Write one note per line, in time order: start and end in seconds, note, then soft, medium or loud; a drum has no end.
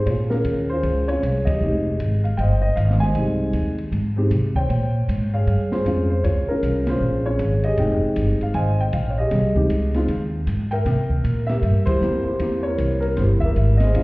0.06 0.44 A#2 medium
0.06 0.32 F4 medium
0.06 0.71 G#4 medium
0.06 0.12 C#5 medium
0.06 kick soft
0.06 ride medium
0.30 1.05 C#4 medium
0.30 0.71 F4 soft
0.30 0.70 A#4 medium
0.30 snare soft
0.44 0.82 D#2 medium
0.44 kick soft
0.44 hi-hat pedal soft
0.44 ride medium
0.69 1.09 F4 medium
0.69 1.09 G#4 medium
0.69 1.09 C5 medium
0.83 1.21 C#2 medium
0.83 kick soft
0.83 ride medium
1.08 1.21 G#3 medium
1.08 1.21 C4 medium
1.08 1.22 C#4 medium
1.08 1.22 F4 medium
1.08 1.46 G#4 medium
1.08 1.48 C#5 loud
1.08 ride soft
1.22 1.60 C2 medium
1.22 kick soft
1.22 hi-hat pedal medium
1.22 ride medium
1.45 1.61 G4 medium
1.45 2.20 G#4 medium
1.45 2.25 D#5 medium
1.45 kick medium
1.45 ride medium
1.60 1.98 F1 medium
1.60 1.83 G#3 soft
1.60 1.84 C4 soft
1.60 1.84 D#4 soft
1.60 1.84 G4 medium
1.99 2.37 G#1 medium
1.99 kick soft
1.99 hi-hat pedal soft
1.99 ride medium
2.24 2.37 F5 medium
2.24 ride soft
2.37 2.76 G1 medium
2.37 3.01 C5 medium
2.37 2.60 D#5 medium
2.37 2.63 G5 medium
2.37 kick soft
2.37 ride medium
2.62 2.77 D#5 medium
2.76 3.14 G#1 medium
2.76 2.81 F5 loud
2.76 kick soft
2.76 hi-hat pedal soft
2.76 ride medium
2.90 snare soft
3.00 3.75 C5 medium
3.00 3.75 D#5 medium
3.00 3.74 G#5 loud
3.00 snare soft
3.15 3.52 C2 medium
3.15 3.74 G3 medium
3.15 3.73 G#3 medium
3.15 3.73 C4 medium
3.15 3.74 D#4 medium
3.15 kick soft
3.15 ride medium
3.53 3.91 D#2 medium
3.53 kick soft
3.53 hi-hat pedal medium
3.53 ride medium
3.78 ride soft
3.92 4.29 G#2 medium
3.92 kick soft
3.92 ride soft
4.16 4.29 G#3 medium
4.16 4.30 C4 medium
4.16 4.29 D#4 medium
4.16 4.30 G4 medium
4.31 4.68 C3 medium
4.31 kick soft
4.31 hi-hat pedal medium
4.31 ride medium
4.56 5.30 C5 medium
4.56 5.29 C#5 medium
4.56 5.35 G5 loud
4.56 kick soft
4.69 5.07 A#2 medium
4.69 kick soft
4.69 ride medium
5.08 5.45 G#2 medium
5.08 kick soft
5.08 hi-hat pedal medium
5.08 ride medium
5.34 5.71 G#4 medium
5.34 6.06 C#5 medium
5.34 5.73 F5 loud
5.47 5.84 G2 medium
5.47 kick soft
5.47 ride soft
5.72 5.86 F4 medium
5.72 6.24 G#4 medium
5.72 6.07 C5 medium
5.72 snare soft
5.85 6.23 F2 medium
5.85 6.07 G#3 medium
5.85 6.08 C4 medium
5.85 6.08 C#4 medium
5.85 6.08 F4 medium
5.85 kick soft
5.85 hi-hat pedal medium
5.85 ride medium
6.10 6.24 C5 medium
6.24 6.46 C#2 medium
6.24 6.49 F4 medium
6.24 6.89 G#4 medium
6.24 6.49 C#5 medium
6.24 kick soft
6.24 ride medium
6.47 7.22 C#4 medium
6.47 6.89 F4 medium
6.47 6.88 A#4 medium
6.47 muted upright bass stroke soft
6.62 7.00 C2 medium
6.62 kick soft
6.62 hi-hat pedal medium
6.62 ride medium
6.87 7.25 F4 medium
6.87 7.26 G#4 medium
6.87 7.28 C5 medium
6.87 snare medium
6.87 ride medium
7.00 7.38 A#1 medium
7.26 7.38 G#3 medium
7.26 7.38 C4 soft
7.26 7.39 C#4 medium
7.26 7.39 F4 medium
7.26 7.65 G#4 medium
7.26 7.65 C#5 medium
7.39 7.76 G#1 medium
7.39 kick soft
7.39 hi-hat pedal medium
7.39 ride medium
7.63 8.38 G4 medium
7.63 8.38 G#4 medium
7.63 8.37 D#5 medium
7.63 ride soft
7.77 8.00 F1 medium
7.77 8.84 G#3 medium
7.77 8.85 C4 medium
7.77 8.85 D#4 soft
7.77 8.79 G5 medium
7.77 kick soft
7.77 ride medium
8.02 muted upright bass stroke soft
8.16 8.39 G1 medium
8.16 kick soft
8.16 hi-hat pedal medium
8.16 ride medium
8.40 8.56 F5 medium
8.40 muted upright bass stroke soft
8.40 ride soft
8.54 8.92 G#1 medium
8.54 9.29 C5 medium
8.54 9.16 D#5 medium
8.54 8.80 G#5 medium
8.54 kick soft
8.54 ride medium
8.80 8.93 G5 medium
8.93 9.30 A#1 medium
8.93 9.09 F5 medium
8.93 kick soft
8.93 hi-hat pedal soft
8.93 ride medium
9.10 9.18 C#5 medium
9.18 9.55 G4 medium
9.18 9.92 G#4 medium
9.18 9.91 D#5 medium
9.31 9.69 C2 medium
9.31 kick soft
9.31 snare soft
9.31 ride medium
9.55 9.68 G#3 medium
9.55 9.69 C4 medium
9.55 9.69 D#4 medium
9.55 9.69 G4 medium
9.55 kick soft
9.70 10.07 C#2 medium
9.70 kick soft
9.70 hi-hat pedal medium
9.70 ride medium
9.94 10.07 G#3 medium
9.94 10.07 C4 medium
9.94 10.08 D#4 medium
9.94 10.08 F4 medium
9.94 snare soft
9.94 ride soft
10.08 10.46 D#2 medium
10.08 kick soft
10.08 ride medium
10.47 10.84 G#2 medium
10.47 kick soft
10.47 hi-hat pedal soft
10.47 ride medium
10.71 11.45 A#4 medium
10.71 11.45 E5 medium
10.71 11.20 G5 medium
10.71 ride soft
10.85 11.23 C3 medium
10.85 kick soft
10.85 snare soft
10.85 ride medium
11.10 kick soft
11.24 11.62 A#2 medium
11.24 kick soft
11.24 hi-hat pedal medium
11.24 ride medium
11.47 11.87 G4 medium
11.47 12.23 A#4 medium
11.47 11.88 E5 loud
11.47 snare soft
11.47 ride soft
11.62 12.00 G2 medium
11.62 kick soft
11.62 ride medium
11.86 12.02 E4 medium
11.86 12.02 G4 medium
11.86 12.23 C5 loud
11.86 kick medium
11.86 ride medium
12.01 12.24 F2 medium
12.01 12.24 A#3 medium
12.01 12.24 C4 medium
12.01 12.24 E4 medium
12.01 12.25 G4 medium
12.01 hi-hat pedal medium
12.24 12.40 E4 medium
12.24 12.61 C5 medium
12.24 muted upright bass stroke soft
12.29 12.41 G4 medium
12.39 12.77 E2 medium
12.39 13.47 A#3 medium
12.39 13.48 C4 medium
12.39 12.65 E4 medium
12.39 13.20 G4 medium
12.39 kick soft
12.39 ride medium
12.63 13.19 E4 medium
12.63 13.03 C#5 medium
12.67 12.99 A#4 medium
12.78 13.16 C2 medium
12.78 kick soft
12.78 hi-hat pedal medium
12.78 ride medium
13.00 13.15 A#4 medium
13.00 ride soft
13.16 13.54 G1 medium
13.16 13.22 C5 medium
13.16 kick soft
13.16 snare soft
13.16 ride medium
13.21 13.92 E4 medium
13.21 13.44 G4 medium
13.40 13.77 E5 loud
13.40 kick soft
13.45 13.93 G4 medium
13.45 13.92 A#4 medium
13.55 13.93 G#1 medium
13.55 kick soft
13.55 hi-hat pedal medium
13.55 ride medium
13.77 14.03 D#5 medium
13.77 snare soft
13.77 ride soft
13.82 14.03 G#4 medium
13.82 14.03 C5 medium
13.94 14.03 A#1 medium
13.94 14.03 G#3 medium
13.94 14.03 A#3 medium
13.94 14.03 C#4 medium
13.94 14.03 F4 medium
13.94 kick soft
13.94 ride medium